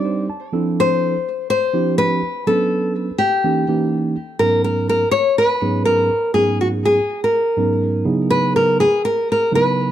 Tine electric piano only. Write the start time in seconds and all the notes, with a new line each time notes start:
Already playing: G3 C4 D4 D#4 G4
0.05 C5
0.30 A5
0.52 F3 C4 D4 E4 A4
1.73 F3 C4 D4 E4 G4
2.47 F#3 B3 C#4 D4 A4
3.44 E3 A#3 C#4 D#4 G4
3.68 E3 A#3 C#4 D#4 G4
4.40 G#2 F#3 B3 C#4 D#4 A#4
5.61 G#2 F#3 B3 C#4 D#4 G#4
6.35 G#2 F#3 B3 C#4 D#4 G#4
7.57 G#2 F#3 B3 C#4 D#4 A#4
8.05 C#3 F#3 B3 D#4 E4 G#4
9.51 C#3 F#3 B3 D#4 E4 B4